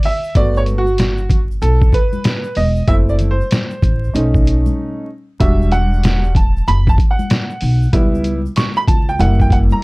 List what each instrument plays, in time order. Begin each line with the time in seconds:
0.03 upright piano E5, open hi-hat, low conga, shaker
0.24 shaker
0.35 upright bass G1, upright piano A3 B3 F#4 D5, kick, closed hi-hat, shaker
0.56 upright piano C#5, shaker
0.66 closed hi-hat, high conga, shaker
0.78 upright piano F#4
0.87 shaker
0.98 snare, closed hi-hat, high conga, shaker
1.18 shaker
1.30 kick, closed hi-hat, low conga, shaker
1.51 shaker
1.62 upright bass B1, upright piano A4, closed hi-hat, shaker
1.82 kick, shaker
1.93 upright piano B4, kick, closed hi-hat, shaker
2.13 high conga, shaker
2.24 snare, closed hi-hat, shaker
2.44 shaker
2.55 upright bass E1, upright piano D#5, open hi-hat, low conga, shaker
2.76 shaker
2.88 upright bass F#1, upright piano A3 C4 E4 E5, kick, closed hi-hat, shaker
3.09 upright piano D5, shaker
3.19 closed hi-hat, high conga, low conga, shaker
3.31 upright piano C5
3.41 shaker
3.51 snare, closed hi-hat, high conga, shaker
3.70 shaker
3.82 upright bass A1, kick, closed hi-hat, low conga, shaker
4.04 shaker
4.14 upright bass B1, upright piano A3 C#4 D#4, closed hi-hat, shaker
4.34 kick, shaker
4.46 closed hi-hat, shaker
4.66 high conga, shaker
5.40 upright bass E1, upright piano G3 D4 F#4 E5, kick, closed hi-hat, shaker
5.62 shaker
5.72 upright piano F#5, closed hi-hat, high conga, shaker
5.93 shaker
6.03 snare, closed hi-hat, high conga, shaker
6.24 shaker
6.35 upright piano A5, kick, closed hi-hat, low conga, shaker
6.57 shaker
6.67 upright bass F#1, upright piano B5, closed hi-hat, shaker
6.87 upright piano A5, kick, shaker
6.98 kick, closed hi-hat, shaker
7.11 upright piano F#5
7.19 high conga, shaker
7.30 snare, closed hi-hat, shaker
7.50 shaker
7.61 upright bass B1, open hi-hat, low conga, shaker
7.82 shaker
7.93 upright bass C#2, upright piano G3 B3 E4, kick, closed hi-hat, shaker
8.15 shaker
8.24 closed hi-hat, high conga, shaker
8.46 shaker
8.56 upright piano C#6, snare, closed hi-hat, high conga, shaker
8.76 upright piano B5, shaker
8.87 upright bass C#2, upright piano A5, kick, closed hi-hat, low conga, shaker
9.09 upright piano G5, shaker
9.19 upright bass F#1, upright piano G3 A#3 E4 F#5, closed hi-hat, shaker
9.40 upright piano G5, kick, shaker
9.50 upright piano F#5, kick, closed hi-hat, shaker
9.71 upright piano A#5, high conga, shaker